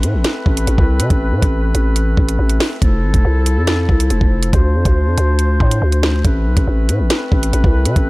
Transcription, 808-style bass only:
0.03 0.15 A2 loud
0.14 0.24 A1 loud
0.46 0.67 A1 loud
0.67 0.78 A1 loud
0.78 1.01 C2 loud
0.99 1.10 C3 loud
1.10 1.33 A1 loud
1.32 1.42 A2 loud
1.42 1.73 A1 loud
1.75 2.16 A1 loud
2.17 2.38 A1 loud
2.39 2.60 A1 loud
2.82 3.05 F1 loud
3.03 3.13 G#1 loud
3.14 3.24 F1 loud
3.25 3.58 C2 loud
3.57 3.87 F2 loud
3.89 4.09 C2 loud
4.10 4.21 F1 loud
4.21 4.52 F1 loud
4.53 4.76 D2 loud
4.75 4.85 F2 loud
4.85 5.08 D2 loud
5.07 5.17 F2 loud
5.18 5.59 D2 loud
5.60 5.81 A2 loud
5.82 6.23 D2 loud
6.25 6.48 A1 loud
6.46 6.56 B1 loud
6.57 6.67 A1 loud
6.67 6.90 A1 loud
6.89 7.01 A2 loud
7.00 7.10 A1 loud
7.32 7.52 A1 loud
7.53 7.63 A1 loud
7.64 7.87 C2 loud
7.85 7.96 C3 loud
7.96 8.10 A1 loud

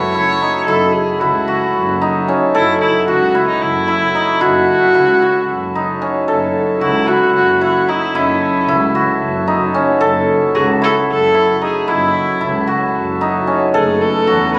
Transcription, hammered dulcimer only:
0.00 2.28 C#4 medium
0.00 0.14 E4 medium
0.00 1.47 F#4 medium
0.00 1.73 A4 medium
0.14 0.48 E4 medium
0.42 0.74 D#4 medium
0.68 1.20 E4 medium
1.21 2.07 E4 medium
1.48 3.07 F#4 medium
2.01 3.41 D#4 medium
2.28 6.01 C#4 medium
2.55 5.47 A4 medium
3.08 5.21 F#4 medium
3.35 3.87 E4 medium
3.88 4.21 E4 medium
4.15 4.47 D#4 medium
4.41 4.94 E4 medium
4.95 5.81 E4 medium
5.22 6.81 F#4 medium
5.75 7.14 D#4 medium
6.02 9.74 C#4 medium
6.28 9.21 A4 medium
6.81 8.94 F#4 medium
7.08 7.61 E4 medium
7.61 7.94 E4 medium
7.88 8.21 D#4 medium
8.15 8.68 E4 medium
8.68 9.54 E4 medium
8.95 10.54 F#4 medium
9.48 10.88 D#4 medium
9.74 13.47 C#4 medium
10.01 12.93 A4 medium
10.55 12.67 F#4 medium
10.82 11.34 E4 medium
11.34 11.68 E4 medium
11.62 11.94 D#4 medium
11.88 12.40 E4 medium
12.41 13.27 E4 medium
12.67 14.27 F#4 medium
13.21 14.59 D#4 medium
13.47 14.59 C#4 medium
13.74 14.59 A4 medium
14.27 14.59 F#4 medium
14.54 14.59 E4 medium

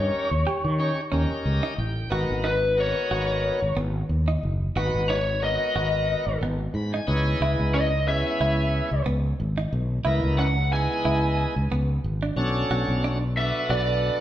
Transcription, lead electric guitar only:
0.00 1.27 C#5 medium
2.45 2.77 B4 medium
2.80 3.74 C#5 medium
5.09 5.42 C#5 medium
5.44 6.39 D#5 medium
7.75 8.07 D#5 medium
8.08 9.03 E5 medium
10.39 10.71 F#5 medium
10.73 11.68 G#5 medium
13.37 13.70 E5 medium
13.70 14.20 D5 medium

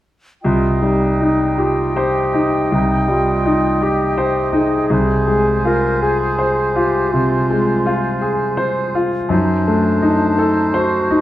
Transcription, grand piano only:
0.44 2.68 C2 soft
0.82 1.43 G3 soft
1.21 1.81 D#4 soft
1.58 2.19 G4 soft
1.96 2.57 C5 soft
2.34 2.72 D#4 soft
2.72 4.88 C2 soft
3.08 3.68 G3 soft
3.45 4.05 D#4 soft
3.82 4.40 G4 soft
4.18 4.76 C5 soft
4.53 4.90 D#4 soft
4.90 7.08 C2 soft
5.27 5.87 G#3 soft
5.65 6.24 F4 soft
6.02 6.61 G#4 soft
6.39 6.98 C5 soft
6.75 7.35 F4 soft
7.14 7.72 C3 soft
7.50 8.08 G#3 soft
7.86 8.44 F4 soft
8.21 8.79 G#4 soft
8.57 9.16 C5 soft
8.95 9.31 F4 soft
9.29 11.21 F#2 soft
9.68 10.25 A3 soft
10.02 10.61 D#4 soft
10.38 10.97 A4 soft
10.74 11.21 C5 soft
11.10 11.21 D#4 soft

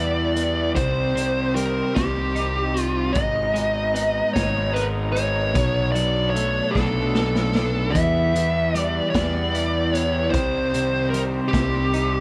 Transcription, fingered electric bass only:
0.00 0.77 E2 medium
0.77 1.81 C2 medium
1.96 3.16 C2 medium
3.16 4.20 G#1 medium
4.36 5.55 G#1 medium
5.55 6.60 B1 medium
6.75 7.95 B1 medium
7.95 8.99 E2 medium
9.14 10.33 E2 medium
10.33 11.38 C2 medium
11.53 12.20 C2 medium

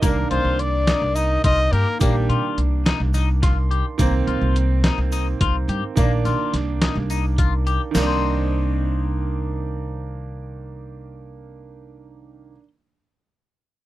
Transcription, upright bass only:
0.03 0.26 C2 medium
0.31 0.43 C2 medium
0.44 0.91 C2 medium
1.02 1.37 C2 medium
1.44 1.67 C2 medium
1.72 1.84 G2 medium
2.01 2.31 A#1 medium
2.29 2.41 C3 medium
2.57 2.92 C2 medium
3.00 3.81 C2 medium
3.99 4.22 C2 medium
4.27 4.39 C2 medium
4.41 4.88 C2 medium
4.98 5.33 C2 medium
5.41 5.64 C2 medium
5.68 5.80 G2 medium
5.97 6.26 A#1 loud
6.25 6.37 C3 medium
6.53 6.88 C2 medium
6.95 7.77 C2 medium
7.95 12.56 C2 medium

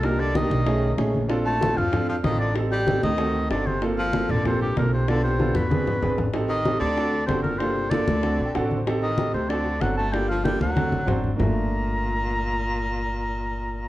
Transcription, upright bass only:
0.00 0.46 C2 medium
0.50 0.95 B1 medium
0.98 1.71 A#1 medium
1.77 2.21 F2 medium
2.24 2.97 A1 medium
3.02 3.47 D2 medium
3.50 4.24 G1 medium
4.30 4.74 A#1 medium
4.76 5.50 B1 medium
5.55 5.99 E2 medium
6.03 6.76 A1 medium
6.80 7.25 D2 medium
7.28 8.02 G1 medium
8.07 8.37 D2 medium
8.39 8.54 A#1 medium
8.55 9.29 A1 medium
9.34 9.78 D2 medium
9.81 10.55 G1 medium
10.60 10.90 D2 medium
10.92 11.07 A1 medium
11.07 11.35 G1 medium
11.39 13.88 G1 medium

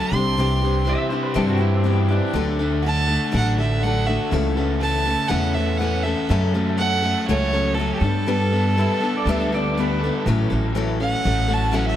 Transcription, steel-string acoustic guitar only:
0.00 0.13 F#3 medium
0.00 0.14 A3 medium
0.00 0.14 C#4 medium
0.00 0.12 A4 medium
0.13 0.38 C4 soft
0.13 0.38 D4 soft
0.13 0.37 G4 medium
0.37 0.62 C3 medium
0.37 0.62 E3 medium
0.37 0.63 C4 medium
0.37 0.62 D4 medium
0.37 0.60 G4 medium
0.61 0.85 C4 soft
0.61 0.86 D4 medium
0.61 0.86 G4 soft
0.85 1.10 E3 medium
0.85 1.11 C4 medium
0.85 1.11 D4 medium
0.85 1.09 G4 medium
1.10 1.34 C4 soft
1.10 1.35 D4 soft
1.10 1.35 G4 medium
1.34 1.60 C3 medium
1.34 1.60 E3 medium
1.34 1.59 C4 medium
1.34 1.58 D4 loud
1.34 1.56 G4 medium
1.57 1.84 C4 soft
1.57 1.84 D4 soft
1.57 1.84 G4 medium
1.84 2.09 E3 medium
1.84 2.10 C4 medium
1.84 2.10 D4 medium
1.84 2.07 G4 medium
2.08 2.35 C4 soft
2.08 2.34 D4 medium
2.08 2.34 G4 medium
2.33 2.59 D3 medium
2.33 2.59 F#3 medium
2.33 2.60 A3 medium
2.33 2.59 D4 medium
2.33 2.58 A4 loud
2.59 2.83 A3 soft
2.59 2.85 D4 medium
2.59 2.84 A4 medium
2.83 3.08 F#3 medium
2.83 3.09 A3 medium
2.83 3.08 D4 medium
2.83 3.07 A4 medium
3.08 3.32 A3 soft
3.08 3.33 D4 soft
3.08 3.33 A4 soft
3.32 3.57 D3 medium
3.32 3.58 F#3 medium
3.32 3.58 A3 medium
3.32 3.58 D4 medium
3.32 3.57 A4 medium
3.58 3.83 A3 soft
3.58 3.84 D4 soft
3.58 3.83 A4 soft
3.83 4.08 F#3 medium
3.83 4.08 A3 medium
3.83 4.07 D4 medium
3.83 4.05 A4 medium
4.07 4.31 A3 soft
4.07 4.33 D4 soft
4.07 4.32 A4 medium
4.31 4.57 C#3 medium
4.31 4.57 E3 medium
4.31 4.57 A3 medium
4.31 4.57 C#4 medium
4.31 4.56 A4 medium
4.57 4.80 A3 soft
4.57 4.82 C#4 medium
4.57 4.82 A4 medium
4.80 5.06 E3 medium
4.80 5.06 A3 medium
4.80 5.06 C#4 medium
4.80 5.05 A4 medium
5.07 5.28 A3 soft
5.07 5.29 C#4 soft
5.07 5.30 A4 medium
5.28 5.54 C#3 medium
5.28 5.55 E3 medium
5.28 5.55 A3 medium
5.28 5.55 C#4 medium
5.28 5.55 A4 medium
5.56 5.79 A3 soft
5.56 5.81 C#4 soft
5.56 5.81 A4 medium
5.79 6.05 E3 medium
5.79 6.05 A3 medium
5.79 6.06 C#4 medium
5.79 6.03 A4 medium
6.05 6.29 A3 soft
6.05 6.30 C#4 soft
6.05 6.30 A4 medium
6.29 6.54 F#2 medium
6.29 6.55 C#3 medium
6.29 6.55 F#3 medium
6.29 6.54 A3 medium
6.29 6.54 C#4 medium
6.29 6.53 A4 medium
6.54 6.77 F#3 medium
6.54 6.78 A3 medium
6.54 6.79 C#4 medium
6.54 6.79 A4 medium
6.78 7.03 F#3 medium
6.78 7.03 A3 medium
6.78 7.01 C#4 medium
6.78 7.01 A4 medium
7.02 7.29 F#3 soft
7.02 7.28 A3 soft
7.02 7.28 C#4 soft
7.02 7.28 A4 medium
7.28 7.53 F#2 medium
7.28 7.54 C#3 medium
7.28 7.54 F#3 medium
7.28 7.54 A3 medium
7.28 7.53 C#4 medium
7.28 7.51 A4 medium
7.53 7.76 F#3 soft
7.53 7.78 A3 medium
7.53 7.78 C#4 soft
7.53 7.78 A4 medium
7.77 8.03 F#3 medium
7.77 8.04 A3 medium
7.77 8.04 C#4 medium
7.77 8.01 A4 medium
8.02 8.27 B3 soft
8.02 8.26 D4 medium
8.02 8.28 A4 medium
8.27 8.52 G3 medium
8.27 8.53 B3 medium
8.27 8.52 D4 medium
8.27 8.51 A4 medium
8.53 8.77 B3 soft
8.53 8.78 D4 soft
8.53 8.77 A4 medium
8.77 9.02 G3 medium
8.77 9.02 B3 medium
8.77 9.02 D4 medium
8.77 8.99 A4 medium
9.00 9.27 D4 soft
9.00 9.26 A4 medium
9.04 9.28 B3 medium
9.27 9.52 G3 medium
9.27 9.53 B3 medium
9.27 9.53 D4 loud
9.27 9.51 A4 loud
9.52 9.77 B3 medium
9.52 9.78 D4 medium
9.52 9.77 A4 medium
9.77 10.02 G3 medium
9.77 10.02 B3 medium
9.77 10.03 D4 medium
9.77 10.02 A4 medium
10.04 10.27 B3 soft
10.04 10.28 D4 medium
10.04 10.27 A4 medium
10.27 10.52 A2 medium
10.27 10.51 E3 medium
10.27 10.52 F#3 medium
10.27 10.51 A3 medium
10.27 10.50 C#4 medium
10.27 10.49 A4 medium
10.50 10.75 F#3 soft
10.50 10.75 A3 medium
10.50 10.76 C#4 medium
10.50 10.75 A4 medium
10.75 11.00 A2 medium
10.75 11.00 E3 medium
10.75 11.01 F#3 medium
10.75 11.01 A3 medium
10.75 11.00 C#4 medium
10.75 10.99 A4 medium
11.00 11.23 F#3 soft
11.00 11.24 A3 soft
11.00 11.25 C#4 soft
11.00 11.25 A4 soft
11.25 11.50 F#3 medium
11.25 11.49 A3 medium
11.25 11.48 C#4 medium
11.25 11.47 A4 medium
11.48 11.72 F#3 soft
11.48 11.72 A3 soft
11.48 11.73 C#4 soft
11.48 11.73 A4 medium
11.71 11.96 A2 medium
11.71 11.96 E3 medium
11.71 11.96 F#3 medium
11.71 11.96 A3 medium
11.71 11.96 C#4 medium
11.71 11.96 A4 medium

